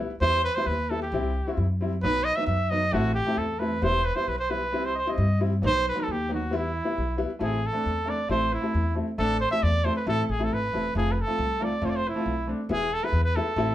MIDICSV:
0, 0, Header, 1, 4, 480
1, 0, Start_track
1, 0, Key_signature, 1, "minor"
1, 0, Tempo, 450113
1, 223, Time_signature, 2, 2, 24, 8
1, 7421, Tempo, 440852
1, 7907, Key_signature, 0, "minor"
1, 14814, End_track
2, 0, Start_track
2, 0, Title_t, "Cornet"
2, 0, Program_c, 0, 56
2, 227, Note_on_c, 0, 72, 117
2, 450, Note_off_c, 0, 72, 0
2, 470, Note_on_c, 0, 71, 101
2, 585, Note_on_c, 0, 72, 95
2, 601, Note_off_c, 0, 71, 0
2, 710, Note_on_c, 0, 71, 89
2, 726, Note_off_c, 0, 72, 0
2, 962, Note_on_c, 0, 69, 80
2, 978, Note_off_c, 0, 71, 0
2, 1076, Note_off_c, 0, 69, 0
2, 1091, Note_on_c, 0, 67, 65
2, 1762, Note_off_c, 0, 67, 0
2, 2160, Note_on_c, 0, 71, 112
2, 2391, Note_on_c, 0, 75, 106
2, 2407, Note_off_c, 0, 71, 0
2, 2516, Note_on_c, 0, 76, 94
2, 2532, Note_off_c, 0, 75, 0
2, 2623, Note_off_c, 0, 76, 0
2, 2630, Note_on_c, 0, 76, 85
2, 2877, Note_on_c, 0, 75, 93
2, 2893, Note_off_c, 0, 76, 0
2, 3128, Note_on_c, 0, 66, 89
2, 3144, Note_off_c, 0, 75, 0
2, 3346, Note_off_c, 0, 66, 0
2, 3353, Note_on_c, 0, 67, 89
2, 3604, Note_on_c, 0, 69, 76
2, 3620, Note_off_c, 0, 67, 0
2, 3833, Note_on_c, 0, 71, 85
2, 3849, Note_off_c, 0, 69, 0
2, 4090, Note_on_c, 0, 72, 100
2, 4106, Note_off_c, 0, 71, 0
2, 4318, Note_on_c, 0, 71, 88
2, 4334, Note_off_c, 0, 72, 0
2, 4432, Note_on_c, 0, 72, 88
2, 4448, Note_off_c, 0, 71, 0
2, 4565, Note_on_c, 0, 71, 82
2, 4581, Note_off_c, 0, 72, 0
2, 4672, Note_off_c, 0, 71, 0
2, 4678, Note_on_c, 0, 72, 85
2, 4803, Note_on_c, 0, 71, 77
2, 4819, Note_off_c, 0, 72, 0
2, 5173, Note_on_c, 0, 72, 84
2, 5189, Note_off_c, 0, 71, 0
2, 5255, Note_off_c, 0, 72, 0
2, 5275, Note_on_c, 0, 75, 59
2, 5291, Note_on_c, 0, 72, 83
2, 5307, Note_off_c, 0, 75, 0
2, 5421, Note_on_c, 0, 75, 81
2, 5437, Note_off_c, 0, 72, 0
2, 5767, Note_off_c, 0, 75, 0
2, 6037, Note_on_c, 0, 72, 113
2, 6238, Note_off_c, 0, 72, 0
2, 6276, Note_on_c, 0, 71, 94
2, 6403, Note_on_c, 0, 69, 86
2, 6419, Note_off_c, 0, 71, 0
2, 6522, Note_on_c, 0, 67, 91
2, 6538, Note_off_c, 0, 69, 0
2, 6734, Note_off_c, 0, 67, 0
2, 6762, Note_on_c, 0, 66, 74
2, 6990, Note_on_c, 0, 64, 86
2, 7006, Note_off_c, 0, 66, 0
2, 7687, Note_off_c, 0, 64, 0
2, 7932, Note_on_c, 0, 68, 83
2, 8185, Note_on_c, 0, 69, 92
2, 8201, Note_off_c, 0, 68, 0
2, 8656, Note_on_c, 0, 74, 81
2, 8672, Note_off_c, 0, 69, 0
2, 8880, Note_off_c, 0, 74, 0
2, 8886, Note_on_c, 0, 72, 95
2, 9132, Note_on_c, 0, 64, 82
2, 9149, Note_off_c, 0, 72, 0
2, 9607, Note_off_c, 0, 64, 0
2, 9851, Note_on_c, 0, 69, 108
2, 10069, Note_off_c, 0, 69, 0
2, 10082, Note_on_c, 0, 72, 97
2, 10193, Note_off_c, 0, 72, 0
2, 10201, Note_on_c, 0, 76, 101
2, 10328, Note_on_c, 0, 74, 100
2, 10344, Note_off_c, 0, 76, 0
2, 10568, Note_on_c, 0, 72, 83
2, 10584, Note_off_c, 0, 74, 0
2, 10685, Note_off_c, 0, 72, 0
2, 10693, Note_on_c, 0, 71, 73
2, 10799, Note_off_c, 0, 71, 0
2, 10822, Note_on_c, 0, 69, 108
2, 11017, Note_off_c, 0, 69, 0
2, 11017, Note_on_c, 0, 69, 51
2, 11060, Note_on_c, 0, 68, 92
2, 11076, Note_off_c, 0, 69, 0
2, 11207, Note_on_c, 0, 69, 81
2, 11224, Note_off_c, 0, 68, 0
2, 11315, Note_on_c, 0, 71, 96
2, 11331, Note_off_c, 0, 69, 0
2, 11777, Note_off_c, 0, 71, 0
2, 11789, Note_on_c, 0, 68, 91
2, 11948, Note_on_c, 0, 71, 58
2, 11964, Note_off_c, 0, 68, 0
2, 12053, Note_on_c, 0, 69, 95
2, 12070, Note_off_c, 0, 71, 0
2, 12518, Note_on_c, 0, 74, 80
2, 12534, Note_off_c, 0, 69, 0
2, 12752, Note_on_c, 0, 72, 87
2, 12768, Note_off_c, 0, 74, 0
2, 12794, Note_on_c, 0, 74, 74
2, 12810, Note_off_c, 0, 72, 0
2, 12868, Note_on_c, 0, 72, 85
2, 12884, Note_off_c, 0, 74, 0
2, 13000, Note_on_c, 0, 64, 81
2, 13016, Note_off_c, 0, 72, 0
2, 13454, Note_off_c, 0, 64, 0
2, 13699, Note_on_c, 0, 68, 97
2, 13925, Note_on_c, 0, 69, 92
2, 13941, Note_off_c, 0, 68, 0
2, 14041, Note_on_c, 0, 71, 93
2, 14057, Note_off_c, 0, 69, 0
2, 14256, Note_off_c, 0, 71, 0
2, 14263, Note_on_c, 0, 71, 93
2, 14389, Note_on_c, 0, 69, 85
2, 14405, Note_off_c, 0, 71, 0
2, 14814, Note_off_c, 0, 69, 0
2, 14814, End_track
3, 0, Start_track
3, 0, Title_t, "Upright piano"
3, 0, Program_c, 1, 0
3, 222, Note_on_c, 1, 55, 74
3, 229, Note_on_c, 1, 59, 71
3, 237, Note_on_c, 1, 64, 87
3, 404, Note_off_c, 1, 55, 0
3, 407, Note_off_c, 1, 59, 0
3, 412, Note_off_c, 1, 64, 0
3, 599, Note_on_c, 1, 55, 68
3, 606, Note_on_c, 1, 59, 60
3, 617, Note_on_c, 1, 64, 73
3, 774, Note_off_c, 1, 55, 0
3, 777, Note_off_c, 1, 59, 0
3, 783, Note_off_c, 1, 64, 0
3, 958, Note_on_c, 1, 55, 58
3, 969, Note_on_c, 1, 59, 51
3, 972, Note_on_c, 1, 64, 74
3, 1074, Note_off_c, 1, 55, 0
3, 1080, Note_off_c, 1, 59, 0
3, 1081, Note_off_c, 1, 64, 0
3, 1200, Note_on_c, 1, 55, 78
3, 1211, Note_on_c, 1, 60, 77
3, 1216, Note_on_c, 1, 64, 79
3, 1376, Note_off_c, 1, 55, 0
3, 1382, Note_off_c, 1, 60, 0
3, 1384, Note_off_c, 1, 64, 0
3, 1558, Note_on_c, 1, 55, 64
3, 1573, Note_on_c, 1, 60, 58
3, 1577, Note_on_c, 1, 64, 80
3, 1736, Note_off_c, 1, 55, 0
3, 1744, Note_off_c, 1, 60, 0
3, 1746, Note_off_c, 1, 64, 0
3, 1925, Note_on_c, 1, 55, 76
3, 1930, Note_on_c, 1, 60, 67
3, 1943, Note_on_c, 1, 64, 75
3, 2041, Note_off_c, 1, 55, 0
3, 2043, Note_off_c, 1, 60, 0
3, 2049, Note_off_c, 1, 64, 0
3, 2165, Note_on_c, 1, 54, 77
3, 2177, Note_on_c, 1, 59, 76
3, 2181, Note_on_c, 1, 63, 97
3, 2341, Note_off_c, 1, 54, 0
3, 2347, Note_off_c, 1, 59, 0
3, 2349, Note_off_c, 1, 63, 0
3, 2523, Note_on_c, 1, 54, 60
3, 2535, Note_on_c, 1, 59, 60
3, 2543, Note_on_c, 1, 63, 70
3, 2701, Note_off_c, 1, 54, 0
3, 2706, Note_off_c, 1, 59, 0
3, 2711, Note_off_c, 1, 63, 0
3, 2885, Note_on_c, 1, 54, 64
3, 2895, Note_on_c, 1, 59, 64
3, 2904, Note_on_c, 1, 63, 78
3, 3002, Note_off_c, 1, 54, 0
3, 3007, Note_off_c, 1, 59, 0
3, 3011, Note_off_c, 1, 63, 0
3, 3119, Note_on_c, 1, 57, 87
3, 3128, Note_on_c, 1, 60, 77
3, 3136, Note_on_c, 1, 64, 90
3, 3299, Note_off_c, 1, 57, 0
3, 3304, Note_off_c, 1, 60, 0
3, 3308, Note_off_c, 1, 64, 0
3, 3479, Note_on_c, 1, 57, 62
3, 3491, Note_on_c, 1, 60, 59
3, 3500, Note_on_c, 1, 64, 60
3, 3659, Note_off_c, 1, 57, 0
3, 3665, Note_off_c, 1, 60, 0
3, 3670, Note_off_c, 1, 64, 0
3, 3834, Note_on_c, 1, 57, 60
3, 3847, Note_on_c, 1, 60, 63
3, 3854, Note_on_c, 1, 64, 66
3, 3957, Note_off_c, 1, 57, 0
3, 3963, Note_off_c, 1, 60, 0
3, 3967, Note_off_c, 1, 64, 0
3, 4067, Note_on_c, 1, 55, 81
3, 4074, Note_on_c, 1, 59, 81
3, 4091, Note_on_c, 1, 64, 82
3, 4253, Note_off_c, 1, 55, 0
3, 4257, Note_off_c, 1, 59, 0
3, 4265, Note_off_c, 1, 64, 0
3, 4424, Note_on_c, 1, 55, 59
3, 4429, Note_on_c, 1, 59, 56
3, 4437, Note_on_c, 1, 64, 69
3, 4611, Note_off_c, 1, 55, 0
3, 4614, Note_off_c, 1, 59, 0
3, 4618, Note_off_c, 1, 64, 0
3, 4789, Note_on_c, 1, 55, 64
3, 4800, Note_on_c, 1, 59, 55
3, 4803, Note_on_c, 1, 64, 68
3, 4914, Note_off_c, 1, 55, 0
3, 4919, Note_off_c, 1, 59, 0
3, 4921, Note_off_c, 1, 64, 0
3, 5030, Note_on_c, 1, 55, 74
3, 5038, Note_on_c, 1, 60, 80
3, 5053, Note_on_c, 1, 64, 75
3, 5213, Note_off_c, 1, 55, 0
3, 5217, Note_off_c, 1, 60, 0
3, 5225, Note_off_c, 1, 64, 0
3, 5392, Note_on_c, 1, 55, 68
3, 5402, Note_on_c, 1, 60, 61
3, 5410, Note_on_c, 1, 64, 69
3, 5574, Note_off_c, 1, 55, 0
3, 5578, Note_off_c, 1, 60, 0
3, 5582, Note_off_c, 1, 64, 0
3, 5755, Note_on_c, 1, 55, 65
3, 5762, Note_on_c, 1, 60, 68
3, 5768, Note_on_c, 1, 64, 75
3, 5874, Note_off_c, 1, 55, 0
3, 5878, Note_off_c, 1, 60, 0
3, 5881, Note_off_c, 1, 64, 0
3, 5993, Note_on_c, 1, 54, 80
3, 6006, Note_on_c, 1, 59, 79
3, 6018, Note_on_c, 1, 63, 96
3, 6172, Note_off_c, 1, 54, 0
3, 6178, Note_off_c, 1, 59, 0
3, 6185, Note_off_c, 1, 63, 0
3, 6349, Note_on_c, 1, 54, 65
3, 6353, Note_on_c, 1, 59, 58
3, 6367, Note_on_c, 1, 63, 73
3, 6529, Note_off_c, 1, 54, 0
3, 6531, Note_off_c, 1, 59, 0
3, 6538, Note_off_c, 1, 63, 0
3, 6703, Note_on_c, 1, 54, 65
3, 6716, Note_on_c, 1, 59, 60
3, 6730, Note_on_c, 1, 63, 75
3, 6825, Note_off_c, 1, 54, 0
3, 6831, Note_off_c, 1, 59, 0
3, 6838, Note_off_c, 1, 63, 0
3, 6933, Note_on_c, 1, 55, 80
3, 6944, Note_on_c, 1, 59, 69
3, 6960, Note_on_c, 1, 64, 97
3, 7118, Note_off_c, 1, 55, 0
3, 7124, Note_off_c, 1, 59, 0
3, 7132, Note_off_c, 1, 64, 0
3, 7296, Note_on_c, 1, 55, 60
3, 7303, Note_on_c, 1, 59, 53
3, 7308, Note_on_c, 1, 64, 73
3, 7479, Note_off_c, 1, 55, 0
3, 7483, Note_off_c, 1, 59, 0
3, 7485, Note_off_c, 1, 64, 0
3, 7649, Note_on_c, 1, 55, 76
3, 7659, Note_on_c, 1, 59, 66
3, 7663, Note_on_c, 1, 64, 84
3, 7778, Note_off_c, 1, 55, 0
3, 7783, Note_off_c, 1, 59, 0
3, 7785, Note_off_c, 1, 64, 0
3, 7892, Note_on_c, 1, 57, 69
3, 7906, Note_on_c, 1, 60, 74
3, 7910, Note_on_c, 1, 64, 85
3, 8081, Note_off_c, 1, 57, 0
3, 8088, Note_off_c, 1, 60, 0
3, 8090, Note_off_c, 1, 64, 0
3, 8256, Note_on_c, 1, 57, 55
3, 8265, Note_on_c, 1, 60, 60
3, 8278, Note_on_c, 1, 62, 62
3, 8444, Note_off_c, 1, 57, 0
3, 8449, Note_off_c, 1, 60, 0
3, 8455, Note_off_c, 1, 62, 0
3, 8610, Note_on_c, 1, 57, 56
3, 8619, Note_on_c, 1, 60, 53
3, 8629, Note_on_c, 1, 62, 71
3, 8742, Note_off_c, 1, 57, 0
3, 8746, Note_off_c, 1, 60, 0
3, 8752, Note_off_c, 1, 62, 0
3, 8867, Note_on_c, 1, 57, 73
3, 8873, Note_on_c, 1, 60, 75
3, 8888, Note_on_c, 1, 64, 85
3, 9052, Note_off_c, 1, 57, 0
3, 9055, Note_off_c, 1, 60, 0
3, 9062, Note_off_c, 1, 64, 0
3, 9223, Note_on_c, 1, 57, 60
3, 9233, Note_on_c, 1, 60, 61
3, 9246, Note_on_c, 1, 64, 68
3, 9411, Note_off_c, 1, 57, 0
3, 9416, Note_off_c, 1, 60, 0
3, 9422, Note_off_c, 1, 64, 0
3, 9585, Note_on_c, 1, 57, 59
3, 9594, Note_on_c, 1, 60, 55
3, 9605, Note_on_c, 1, 64, 65
3, 9712, Note_off_c, 1, 57, 0
3, 9716, Note_off_c, 1, 60, 0
3, 9722, Note_off_c, 1, 64, 0
3, 9840, Note_on_c, 1, 57, 83
3, 9849, Note_on_c, 1, 60, 61
3, 9867, Note_on_c, 1, 62, 97
3, 10020, Note_off_c, 1, 57, 0
3, 10025, Note_off_c, 1, 60, 0
3, 10034, Note_off_c, 1, 62, 0
3, 10200, Note_on_c, 1, 57, 63
3, 10207, Note_on_c, 1, 60, 50
3, 10217, Note_on_c, 1, 64, 66
3, 10381, Note_off_c, 1, 57, 0
3, 10384, Note_off_c, 1, 60, 0
3, 10389, Note_off_c, 1, 64, 0
3, 10557, Note_on_c, 1, 57, 69
3, 10566, Note_on_c, 1, 60, 60
3, 10578, Note_on_c, 1, 64, 67
3, 10679, Note_off_c, 1, 57, 0
3, 10684, Note_off_c, 1, 60, 0
3, 10689, Note_off_c, 1, 64, 0
3, 10802, Note_on_c, 1, 57, 82
3, 10807, Note_on_c, 1, 60, 67
3, 10816, Note_on_c, 1, 64, 84
3, 10982, Note_off_c, 1, 57, 0
3, 10984, Note_off_c, 1, 60, 0
3, 10989, Note_off_c, 1, 64, 0
3, 11159, Note_on_c, 1, 57, 63
3, 11164, Note_on_c, 1, 60, 55
3, 11170, Note_on_c, 1, 64, 71
3, 11340, Note_off_c, 1, 57, 0
3, 11343, Note_off_c, 1, 60, 0
3, 11346, Note_off_c, 1, 64, 0
3, 11529, Note_on_c, 1, 57, 60
3, 11537, Note_on_c, 1, 60, 57
3, 11547, Note_on_c, 1, 64, 64
3, 11645, Note_off_c, 1, 57, 0
3, 11648, Note_off_c, 1, 60, 0
3, 11654, Note_off_c, 1, 64, 0
3, 11769, Note_on_c, 1, 57, 65
3, 11776, Note_on_c, 1, 60, 63
3, 11784, Note_on_c, 1, 65, 76
3, 11944, Note_off_c, 1, 57, 0
3, 11948, Note_off_c, 1, 60, 0
3, 11952, Note_off_c, 1, 65, 0
3, 12113, Note_on_c, 1, 57, 63
3, 12121, Note_on_c, 1, 60, 52
3, 12126, Note_on_c, 1, 65, 61
3, 12295, Note_off_c, 1, 57, 0
3, 12299, Note_off_c, 1, 60, 0
3, 12302, Note_off_c, 1, 65, 0
3, 12473, Note_on_c, 1, 57, 67
3, 12484, Note_on_c, 1, 60, 57
3, 12486, Note_on_c, 1, 65, 68
3, 12595, Note_off_c, 1, 57, 0
3, 12601, Note_off_c, 1, 60, 0
3, 12602, Note_off_c, 1, 65, 0
3, 12708, Note_on_c, 1, 57, 69
3, 12711, Note_on_c, 1, 60, 69
3, 12726, Note_on_c, 1, 65, 83
3, 12891, Note_off_c, 1, 57, 0
3, 12893, Note_off_c, 1, 60, 0
3, 12900, Note_off_c, 1, 65, 0
3, 13074, Note_on_c, 1, 57, 61
3, 13080, Note_on_c, 1, 60, 54
3, 13089, Note_on_c, 1, 65, 72
3, 13253, Note_off_c, 1, 57, 0
3, 13256, Note_off_c, 1, 60, 0
3, 13261, Note_off_c, 1, 65, 0
3, 13422, Note_on_c, 1, 57, 62
3, 13429, Note_on_c, 1, 60, 62
3, 13443, Note_on_c, 1, 62, 77
3, 13546, Note_off_c, 1, 57, 0
3, 13550, Note_off_c, 1, 60, 0
3, 13557, Note_off_c, 1, 62, 0
3, 13660, Note_on_c, 1, 56, 71
3, 13668, Note_on_c, 1, 59, 76
3, 13678, Note_on_c, 1, 64, 90
3, 13844, Note_off_c, 1, 56, 0
3, 13848, Note_off_c, 1, 59, 0
3, 13853, Note_off_c, 1, 64, 0
3, 14028, Note_on_c, 1, 56, 63
3, 14034, Note_on_c, 1, 59, 59
3, 14042, Note_on_c, 1, 64, 66
3, 14207, Note_off_c, 1, 56, 0
3, 14210, Note_off_c, 1, 59, 0
3, 14213, Note_off_c, 1, 64, 0
3, 14387, Note_on_c, 1, 56, 61
3, 14396, Note_on_c, 1, 59, 62
3, 14402, Note_on_c, 1, 64, 80
3, 14505, Note_off_c, 1, 56, 0
3, 14509, Note_off_c, 1, 59, 0
3, 14512, Note_off_c, 1, 64, 0
3, 14611, Note_on_c, 1, 57, 70
3, 14624, Note_on_c, 1, 60, 77
3, 14630, Note_on_c, 1, 64, 95
3, 14795, Note_off_c, 1, 57, 0
3, 14802, Note_off_c, 1, 60, 0
3, 14805, Note_off_c, 1, 64, 0
3, 14814, End_track
4, 0, Start_track
4, 0, Title_t, "Upright bass"
4, 0, Program_c, 2, 32
4, 222, Note_on_c, 2, 40, 86
4, 513, Note_off_c, 2, 40, 0
4, 705, Note_on_c, 2, 39, 86
4, 1191, Note_on_c, 2, 36, 87
4, 1207, Note_off_c, 2, 39, 0
4, 1481, Note_off_c, 2, 36, 0
4, 1677, Note_on_c, 2, 42, 77
4, 2164, Note_on_c, 2, 35, 76
4, 2180, Note_off_c, 2, 42, 0
4, 2450, Note_off_c, 2, 35, 0
4, 2634, Note_on_c, 2, 42, 78
4, 3114, Note_on_c, 2, 33, 80
4, 3130, Note_off_c, 2, 42, 0
4, 3404, Note_off_c, 2, 33, 0
4, 3595, Note_on_c, 2, 40, 70
4, 4073, Note_on_c, 2, 28, 90
4, 4089, Note_off_c, 2, 40, 0
4, 4363, Note_off_c, 2, 28, 0
4, 4557, Note_on_c, 2, 35, 74
4, 5032, Note_off_c, 2, 35, 0
4, 5032, Note_on_c, 2, 36, 85
4, 5320, Note_off_c, 2, 36, 0
4, 5520, Note_on_c, 2, 43, 85
4, 6003, Note_on_c, 2, 35, 94
4, 6019, Note_off_c, 2, 43, 0
4, 6286, Note_off_c, 2, 35, 0
4, 6481, Note_on_c, 2, 39, 80
4, 6963, Note_off_c, 2, 39, 0
4, 6963, Note_on_c, 2, 40, 99
4, 7243, Note_off_c, 2, 40, 0
4, 7442, Note_on_c, 2, 35, 72
4, 7727, Note_off_c, 2, 35, 0
4, 7906, Note_on_c, 2, 33, 90
4, 8196, Note_off_c, 2, 33, 0
4, 8398, Note_on_c, 2, 40, 81
4, 8686, Note_off_c, 2, 40, 0
4, 8872, Note_on_c, 2, 33, 83
4, 9163, Note_off_c, 2, 33, 0
4, 9363, Note_on_c, 2, 40, 80
4, 9651, Note_off_c, 2, 40, 0
4, 9843, Note_on_c, 2, 33, 93
4, 10131, Note_off_c, 2, 33, 0
4, 10328, Note_on_c, 2, 40, 82
4, 10614, Note_off_c, 2, 40, 0
4, 10805, Note_on_c, 2, 33, 96
4, 10948, Note_off_c, 2, 33, 0
4, 11047, Note_on_c, 2, 33, 76
4, 11260, Note_off_c, 2, 33, 0
4, 11294, Note_on_c, 2, 32, 65
4, 11504, Note_off_c, 2, 32, 0
4, 11538, Note_on_c, 2, 28, 70
4, 11746, Note_off_c, 2, 28, 0
4, 11765, Note_on_c, 2, 29, 90
4, 12051, Note_off_c, 2, 29, 0
4, 12238, Note_on_c, 2, 36, 83
4, 12525, Note_off_c, 2, 36, 0
4, 12709, Note_on_c, 2, 29, 96
4, 12998, Note_off_c, 2, 29, 0
4, 13189, Note_on_c, 2, 35, 80
4, 13477, Note_off_c, 2, 35, 0
4, 13663, Note_on_c, 2, 28, 96
4, 13951, Note_off_c, 2, 28, 0
4, 14132, Note_on_c, 2, 40, 81
4, 14422, Note_off_c, 2, 40, 0
4, 14611, Note_on_c, 2, 33, 96
4, 14757, Note_off_c, 2, 33, 0
4, 14814, End_track
0, 0, End_of_file